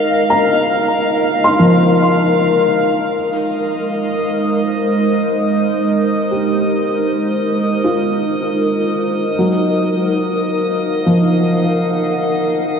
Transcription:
Already playing: G#3 D#4 A#4 D#5 F5 F6
0.30 A#5
1.44 C6
1.59 F3
3.12 G#3 D#5 D#6
3.85 C5
6.31 G4
7.84 F4
9.39 F#3
9.74 F5
10.57 F#5
11.06 F3

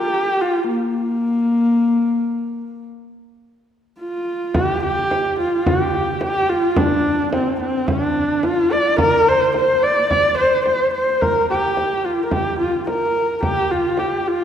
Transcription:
Already playing: G4
0.40 F4
0.69 A#3
4.00 F4
4.54 G4, frame drum
4.84 G4
5.11 frame drum
5.39 F4, frame drum
5.66 G4, frame drum
6.09 frame drum
6.21 G4, frame drum
6.50 F4
6.76 D4, frame drum
7.19 frame drum
7.33 C4, frame drum
7.60 C4, frame drum
7.87 D4, frame drum
8.43 F4, frame drum
8.72 D5
8.98 A#4, frame drum
9.28 C5
9.41 frame drum
9.54 C5, frame drum
9.82 D5, frame drum
10.10 D5, frame drum
10.38 C5
10.52 frame drum
10.66 C5, frame drum
10.94 C5
11.22 A#4, frame drum
11.50 G4
11.64 frame drum
11.77 frame drum
12.05 F4, frame drum
12.25 A#4
12.31 G4, frame drum
12.60 F4
12.73 frame drum
12.87 A#4, frame drum
13.43 G4, frame drum
13.70 F4, frame drum
13.97 G4, frame drum
14.28 F4

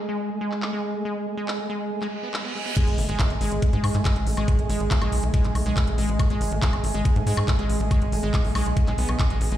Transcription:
Already playing: G#4 D#5 G#5
0.09 G#3
0.30 A3
0.41 G#3
0.52 clap
0.62 A3, clap
0.73 G#3
0.95 A3
1.05 G#3
1.27 A3
1.37 G#3
1.48 clap
1.59 A3
1.69 G#3
1.91 A3, reverse cymbal
2.02 G#3, clap
2.23 B3
2.34 G#3, clap
2.44 B3
2.55 G#3
2.66 B3
2.77 G#3, kick, closed hi-hat, crash, impact
2.87 G#1, closed hi-hat
2.98 G#1 A3, open hi-hat
3.09 G#1 G#3, closed hi-hat
3.20 kick, clap, closed hi-hat, high woodblock
3.30 G#1 A3, closed hi-hat
3.41 G#1 G#3, open hi-hat
3.52 G#1, closed hi-hat
3.62 A3, kick, closed hi-hat
3.73 G#2 G#3, closed hi-hat
3.84 G#2, open hi-hat, high woodblock
3.94 G#2 A3, clap, closed hi-hat
4.05 G#3, kick, clap, closed hi-hat
4.16 A1, closed hi-hat
4.27 A1 A3, open hi-hat
4.37 A1 G#3, closed hi-hat, high woodblock
4.48 kick, closed hi-hat
4.59 G#1 A3, closed hi-hat
4.69 G#1 G#3, open hi-hat
4.80 G#1, closed hi-hat
4.91 A3, kick, clap, closed hi-hat
5.02 B1 G#3, closed hi-hat, high woodblock
5.12 B1, open hi-hat
5.23 B1 A3, closed hi-hat
5.34 G#3, kick, closed hi-hat
5.44 B1, clap, closed hi-hat
5.55 B1 A3, open hi-hat, high woodblock
5.66 B1 G#3, closed hi-hat
5.77 kick, clap, closed hi-hat
5.87 A1 A3, closed hi-hat
5.98 A1 G#3, open hi-hat
6.09 A1, closed hi-hat
6.19 A3, kick, closed hi-hat, high woodblock
6.30 G#1 G#3, closed hi-hat
6.41 G#1, open hi-hat
6.52 G#1 A3, closed hi-hat
6.62 G#3, kick, clap, closed hi-hat
6.73 G#1, closed hi-hat, high woodblock
6.84 G#1 A3, open hi-hat
6.94 G#1 G#3, closed hi-hat
7.05 kick, closed hi-hat
7.16 G#2 A3, closed hi-hat
7.27 G#2 G#3, open hi-hat
7.37 G#2, clap, high woodblock
7.48 A3, kick, clap, closed hi-hat
7.59 A1 G#3, closed hi-hat
7.69 A1, open hi-hat
7.80 A1 A3, closed hi-hat
7.91 G#3, kick, closed hi-hat, high woodblock
8.02 G#1, closed hi-hat
8.12 G#1 A3, open hi-hat
8.23 G#1 G#3, closed hi-hat
8.34 kick, clap, closed hi-hat
8.44 B1 A3, open hi-hat
8.55 B1 G#3, open hi-hat, high woodblock
8.66 B1, closed hi-hat
8.77 A3, kick, closed hi-hat
8.87 B1 G#3, clap, closed hi-hat
8.98 B1 B3, open hi-hat
9.09 B1, closed hi-hat, high woodblock
9.19 F#3, kick, clap, closed hi-hat
9.30 A1 G#3, closed hi-hat
9.41 A1, open hi-hat
9.52 A1 G#3, closed hi-hat

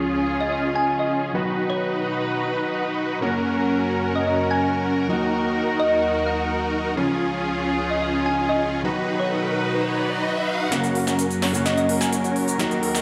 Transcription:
Already playing: C#2 C#3 F3 G#3 C#4 F4 G#4
0.40 D#5
0.52 D#5
0.76 G#5
0.99 D#5
1.33 B2 D#3 F#3 B3 D#4 F#4 B4
1.70 C#5
3.21 F#2 C#3 F#3 A#3 C#4 F#4 A#4
4.16 D#5
4.27 D#5
4.51 G#5
5.08 D#2 D#3 F#3 A#3 D#4 F#4 A#4
5.80 D#5
6.26 F#5
6.96 C#2 C#3 F3 G#3 C#4 F4 G#4, riser
7.90 D#5
8.02 D#5
8.26 G#5
8.49 D#5
8.83 B2 D#3 F#3 B3 D#4 F#4 B4
9.20 C#5
10.71 F#2 C#3 F#3 A#3 C#4 F#4 A#4, snare, closed hi-hat, riser, shaker
10.84 closed hi-hat, shaker
10.95 open hi-hat
11.07 C#4 F#4 A#4, snare, closed hi-hat, shaker
11.19 closed hi-hat, shaker
11.31 closed hi-hat, shaker
11.42 C#4 F#4 C#5, snare, open hi-hat
11.53 C#3 F#3 A#3 F#4, closed hi-hat, shaker
11.66 D#5, snare, closed hi-hat, shaker
11.77 D#5, closed hi-hat, shaker
11.89 C#4 F#4 A#4, open hi-hat
12.01 G#5, snare, closed hi-hat, shaker
12.13 closed hi-hat, shaker
12.24 C#4 F#4 C#5, closed hi-hat, shaker
12.36 open hi-hat
12.48 closed hi-hat, shaker
12.58 D#2 D#3 F#3 A#3 D#4 F#4 A#4, snare, closed hi-hat, shaker
12.71 closed hi-hat, shaker
12.83 open hi-hat
12.95 D#4 F#4 A#4, snare, closed hi-hat, shaker

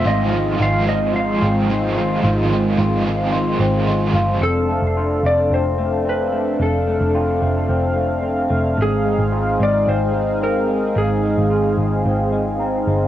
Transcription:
Already playing: A3 C4
0.04 G#1 G#2 D#3 F3 G#3 C4 F4 D#5
0.31 F3 G#3 C4 F4
0.59 G#1 G#2 D#3 F3 G#3 C4 F4
0.63 F5
0.87 F3 G#3 C4 F4 D#5
1.13 F3 G#3 C4 F4 F5
1.41 G#1 F3 G#3 C4 F4
1.68 G#2 D#3 F3 G#3 C4 F4
1.95 F3 G#3 C4 F4
2.23 G#1 G#2 D#3 F3 G#3 C4 F4
2.50 F3 G#3 C4 F4
2.77 G#1 G#2 D#3 F3 G#3 C4 F4
3.05 F3 G#3 C4 F4
3.32 F3 G#3 C4 F4
3.59 G#1 F3 G#3 C4 F4
3.86 G#2 D#3 F3 G#3 C4 F4 C6
4.13 G1 F3 G#3 C4 F4
4.41 F1 F2 C4 D4 A4 F5
4.68 A3 A5
4.82 F1
4.87 C7
4.97 F4
5.23 F1 A3 D5
5.50 F1 C4 C5
5.78 A3
6.05 C4
6.09 B4
6.32 A3
6.60 F1 F2 A4
6.87 A3
7.00 F1
7.15 F4 G5
7.41 F1 A3
7.69 F1 C4
7.96 A3
8.23 C4
8.50 F1 A3
8.77 G#1 G#2 D#4 G#4
8.82 G#4
9.05 G#3
9.19 G#1
9.32 F4
9.60 G#1 G#3 D5
9.87 G#1 C4 C5
10.14 G#3
10.41 C4 A#4
10.69 G#3
10.95 G#1 G#2 G#4
11.23 G#3
11.38 G#1
11.50 F4
11.77 G#1 G#3
12.05 G#1 C4
12.32 G#3
12.59 C4 A#5
12.87 G1 G#3

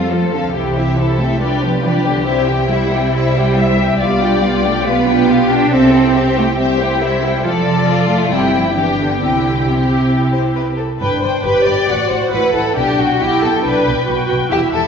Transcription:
Already playing: F2 G3 C4 F4 A4 F5
0.10 F3 A3 F4 A4 C5
0.32 D3 C4 A4 F5
0.53 C2 E3 E4 G4 C5
0.76 C4 E4 G4 E5
0.98 E4 G4 A4 C5
1.19 A3 C4 E4 G4 E5
1.40 G3 D4 F4 G4 B4 D5
1.62 F3 B3 D4 G4 B4
1.83 E3 D4 F4 G4 B4 D5
2.05 D3 B3 D4 G4 B4
2.26 C3 G3 E4 C5 E5
2.48 E3 C4 G4 G5
2.70 G3 E4 C5 E5
2.91 C4 G4 G5
3.13 G3 E4 C5 E5
3.35 C4 G4 G5
3.56 G3 E4 C5 E5
3.78 C4 G4 G5
4.00 B1 G3 B3 F4 G4 D5 F5
4.21 D4 F4 G4 G5
4.42 B3 F4 G4 F5
4.63 A3 D4 F4 G4 G5
4.85 B3 F4 G4 B4 F5
5.05 D4 F4 G4 G5
5.28 B3 F4 G4 F5
5.49 D4 F4 G4 G5
5.71 C2 C4 G4 A4 C5 E5
5.93 E4 G4 C5 G5
6.14 C4 G4 C5 E5
6.36 A3 E4 G4 C5 G5
6.58 G3 C4 G4 C5 E5
6.79 E4 G4 C5 G5
7.01 C4 E4 G4 C5 E5
7.22 E4 G4 C5 G5
7.43 F1 F3 F4 A4 D5
7.88 F4
8.09 A3
8.31 G1 G3 C4 E4 G4 G5
8.55 F3
8.75 E3 B3 D4 G4 G5
8.99 D3
9.19 C2 D3 C4 E4 G4 G5
9.66 C3 C4 E4 G4
10.33 C5
10.56 B4
10.78 A4
11.00 G1 G2 D4 B4 G5
11.21 G1 G2 C5 G5
11.44 G1 G2 G4 B4 G5
11.66 G1 G2 D5 G5
11.89 A1 A2 F#4 F#5
12.10 A1 A2 C5 F#5
12.32 A1 A2 E4 B4 F#5
12.54 A1 A2 A4 F#5
12.76 B1 B2 D4 G4 G5
12.98 B1 B2 F#4 G5
13.19 B1 B2 E4 G4 G5
13.43 B1 B2 A4 G5
13.63 B1 B2 D4 B4 G5
13.85 B1 B2 G5
14.07 B1 B2 F#4 G5
14.28 B1 B2 G5
14.51 E1 E2 E4 G4 E5
14.72 E1 E2 A4 E5

